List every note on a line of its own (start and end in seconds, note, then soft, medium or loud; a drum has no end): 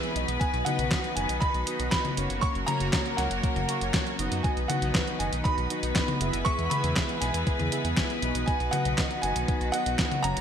0.00 0.39 E3 medium
0.00 0.39 G#3 medium
0.00 0.13 B3 medium
0.00 2.39 B3 medium
0.00 0.13 E4 medium
0.00 0.13 G#4 medium
0.00 0.39 G#4 medium
0.00 2.39 B4 loud
0.00 0.13 E5 medium
0.00 0.11 G#5 medium
0.00 closed hi-hat soft
0.16 0.26 B1 medium
0.16 0.63 B3 medium
0.16 0.63 D#4 medium
0.16 0.63 F#4 medium
0.16 0.63 D#5 medium
0.16 closed hi-hat medium
0.28 0.38 B1 medium
0.28 closed hi-hat medium
0.40 2.41 D#3 medium
0.40 6.42 F#3 medium
0.40 6.42 F#4 medium
0.40 0.64 G#5 loud
0.40 kick loud
0.40 closed hi-hat medium
0.53 0.64 B1 medium
0.53 closed hi-hat soft
0.65 1.13 B3 loud
0.65 1.13 D#4 medium
0.65 1.13 F#4 medium
0.65 1.13 D#5 loud
0.65 1.12 F#5 medium
0.65 closed hi-hat medium
0.65 high tom medium
0.79 0.89 B1 medium
0.79 closed hi-hat medium
0.91 kick loud
0.91 snare loud
0.91 clap loud
0.91 closed hi-hat medium
1.04 closed hi-hat soft
1.15 1.27 F#1 loud
1.15 1.64 B3 medium
1.15 1.64 D#4 medium
1.15 1.64 F#4 medium
1.15 1.64 D#5 medium
1.15 1.42 G#5 medium
1.15 closed hi-hat medium
1.29 1.39 B1 medium
1.29 closed hi-hat medium
1.40 1.89 B5 loud
1.40 kick loud
1.40 closed hi-hat medium
1.54 1.65 B1 medium
1.54 closed hi-hat soft
1.67 1.77 B3 medium
1.67 1.77 D#4 medium
1.67 1.77 F#4 medium
1.67 1.77 D#5 loud
1.67 closed hi-hat medium
1.79 1.90 B1 medium
1.79 2.14 B3 medium
1.79 2.14 D#4 medium
1.79 2.14 F#4 medium
1.79 2.14 D#5 medium
1.79 closed hi-hat medium
1.91 2.44 B5 loud
1.91 kick loud
1.91 snare loud
1.91 clap loud
1.91 closed hi-hat soft
2.05 closed hi-hat soft
2.05 high tom medium
2.17 2.28 F#1 medium
2.17 2.65 A#3 medium
2.17 2.65 C#4 medium
2.17 2.65 F#4 medium
2.17 2.65 C#5 medium
2.17 closed hi-hat medium
2.30 2.40 F#1 medium
2.30 closed hi-hat medium
2.41 4.42 C#3 medium
2.41 4.42 A#3 medium
2.41 4.42 A#4 medium
2.41 2.47 C#6 loud
2.41 kick loud
2.41 closed hi-hat medium
2.55 2.65 F#1 medium
2.55 closed hi-hat soft
2.67 3.15 A#3 loud
2.67 3.15 C#4 medium
2.67 3.15 F#4 medium
2.67 3.15 C#5 loud
2.67 3.19 A#5 loud
2.67 closed hi-hat medium
2.67 high tom medium
2.80 2.91 F#1 medium
2.80 closed hi-hat medium
2.93 kick loud
2.93 snare loud
2.93 clap loud
2.93 closed hi-hat medium
3.06 closed hi-hat soft
3.17 3.28 C#2 medium
3.17 3.66 A#3 medium
3.17 3.66 C#4 medium
3.17 3.66 F#4 medium
3.17 3.66 C#5 medium
3.17 4.14 F#5 medium
3.17 snare soft
3.17 closed hi-hat medium
3.31 3.41 F#1 medium
3.31 closed hi-hat medium
3.43 kick loud
3.43 closed hi-hat soft
3.56 3.66 F#1 medium
3.56 closed hi-hat soft
3.56 high tom medium
3.69 3.78 A#3 medium
3.69 3.78 C#4 medium
3.69 3.78 F#4 medium
3.69 3.78 C#5 loud
3.69 closed hi-hat medium
3.81 3.91 F#1 medium
3.81 4.16 A#3 medium
3.81 4.16 C#4 medium
3.81 4.16 F#4 medium
3.81 4.16 C#5 medium
3.81 closed hi-hat medium
3.94 kick loud
3.94 snare loud
3.94 clap loud
3.94 closed hi-hat soft
4.07 closed hi-hat soft
4.19 4.29 F#1 loud
4.19 4.66 B3 medium
4.19 4.66 D#4 medium
4.19 4.66 F#4 medium
4.19 4.66 D#5 loud
4.19 closed hi-hat medium
4.32 4.42 F#2 medium
4.32 closed hi-hat medium
4.43 6.44 D#3 medium
4.43 10.41 B3 medium
4.43 10.41 B4 medium
4.43 4.49 G#5 medium
4.43 kick loud
4.43 closed hi-hat medium
4.57 4.67 B1 medium
4.57 closed hi-hat soft
4.68 5.17 B3 loud
4.68 5.17 D#4 medium
4.68 5.17 F#4 medium
4.68 5.17 D#5 loud
4.68 5.16 F#5 medium
4.68 closed hi-hat medium
4.68 high tom medium
4.82 4.92 B1 medium
4.82 closed hi-hat medium
4.95 kick loud
4.95 snare loud
4.95 clap loud
4.95 closed hi-hat medium
5.07 closed hi-hat soft
5.19 5.30 F#1 medium
5.19 5.67 B3 medium
5.19 5.67 D#4 medium
5.19 5.67 F#4 medium
5.19 5.67 D#5 medium
5.19 5.24 G#5 medium
5.19 closed hi-hat medium
5.32 5.43 B1 medium
5.32 closed hi-hat medium
5.44 6.48 B5 loud
5.44 kick loud
5.44 closed hi-hat medium
5.58 5.68 B1 medium
5.58 closed hi-hat soft
5.70 5.80 B3 medium
5.70 5.80 D#4 medium
5.70 5.80 F#4 medium
5.70 5.80 D#5 loud
5.70 closed hi-hat medium
5.83 5.93 B1 medium
5.83 6.18 B3 medium
5.83 6.18 D#4 medium
5.83 6.18 F#4 medium
5.83 6.18 D#5 medium
5.83 closed hi-hat medium
5.96 kick loud
5.96 snare loud
5.96 clap loud
5.96 closed hi-hat soft
6.08 closed hi-hat soft
6.08 high tom medium
6.21 6.31 F#1 medium
6.21 6.68 B3 medium
6.21 6.68 E4 medium
6.21 6.68 G#4 medium
6.21 6.68 E5 medium
6.21 closed hi-hat medium
6.33 6.44 F#1 medium
6.33 closed hi-hat medium
6.45 8.46 E3 medium
6.45 8.46 G#3 medium
6.45 8.46 G#4 medium
6.45 6.71 C#6 loud
6.45 kick loud
6.45 closed hi-hat medium
6.59 6.69 E2 medium
6.59 closed hi-hat soft
6.70 7.19 B3 loud
6.70 7.19 E4 medium
6.70 7.19 G#4 medium
6.70 7.19 E5 loud
6.70 7.22 B5 loud
6.70 closed hi-hat medium
6.70 high tom medium
6.84 6.94 E2 medium
6.84 closed hi-hat medium
6.96 kick loud
6.96 snare loud
6.96 clap loud
6.96 closed hi-hat medium
7.09 closed hi-hat soft
7.20 7.32 B1 loud
7.20 7.69 B3 medium
7.20 7.69 E4 medium
7.20 7.69 G#4 medium
7.20 7.69 E5 medium
7.20 8.18 G#5 medium
7.20 snare soft
7.20 closed hi-hat medium
7.34 7.44 E2 medium
7.34 closed hi-hat medium
7.47 kick loud
7.47 closed hi-hat medium
7.59 7.70 E2 medium
7.59 closed hi-hat soft
7.59 high tom medium
7.72 7.82 B3 medium
7.72 7.82 E4 medium
7.72 7.82 G#4 medium
7.72 7.82 E5 loud
7.72 closed hi-hat medium
7.85 7.95 E2 medium
7.85 8.19 B3 medium
7.85 8.19 E4 medium
7.85 8.19 G#4 medium
7.85 8.19 E5 medium
7.85 closed hi-hat medium
7.97 kick loud
7.97 snare loud
7.97 clap loud
7.97 closed hi-hat medium
8.10 closed hi-hat soft
8.22 8.33 B1 loud
8.22 8.70 B3 medium
8.22 8.70 D#4 medium
8.22 8.70 F#4 medium
8.22 8.70 D#5 medium
8.22 closed hi-hat medium
8.35 8.45 B1 medium
8.35 closed hi-hat medium
8.46 10.41 D#3 medium
8.46 10.41 F#3 medium
8.46 10.41 F#4 medium
8.46 8.70 G#5 loud
8.46 kick loud
8.46 closed hi-hat medium
8.60 8.70 B1 medium
8.60 closed hi-hat soft
8.71 9.20 B3 loud
8.71 9.20 D#4 medium
8.71 9.20 F#4 medium
8.71 9.20 D#5 loud
8.71 9.24 F#5 loud
8.71 closed hi-hat medium
8.71 high tom medium
8.85 8.96 B1 medium
8.85 closed hi-hat medium
8.98 kick loud
8.98 snare loud
8.98 clap loud
8.98 closed hi-hat medium
9.11 closed hi-hat soft
9.22 9.33 F#1 loud
9.22 9.71 B3 medium
9.22 9.71 D#4 medium
9.22 9.71 F#4 medium
9.22 9.71 D#5 medium
9.22 9.69 G#5 loud
9.22 closed hi-hat loud
9.36 9.46 B1 medium
9.36 closed hi-hat medium
9.48 kick loud
9.48 closed hi-hat medium
9.61 9.71 B1 medium
9.61 closed hi-hat soft
9.72 9.83 B3 medium
9.72 9.83 D#4 medium
9.72 9.83 F#4 medium
9.72 9.83 D#5 loud
9.72 10.25 F#5 loud
9.72 closed hi-hat loud
9.86 9.96 B1 medium
9.86 10.21 B3 medium
9.86 10.21 D#4 medium
9.86 10.21 F#4 medium
9.86 10.21 D#5 medium
9.86 closed hi-hat medium
9.99 kick loud
9.99 snare loud
9.99 clap loud
9.99 closed hi-hat medium
10.12 closed hi-hat soft
10.12 high tom medium
10.23 10.34 F#1 medium
10.23 10.41 A#3 medium
10.23 10.41 C#4 medium
10.23 10.41 F#4 medium
10.23 10.41 C#5 medium
10.23 10.41 A#5 loud
10.23 closed hi-hat loud
10.37 10.41 F#1 medium
10.37 closed hi-hat medium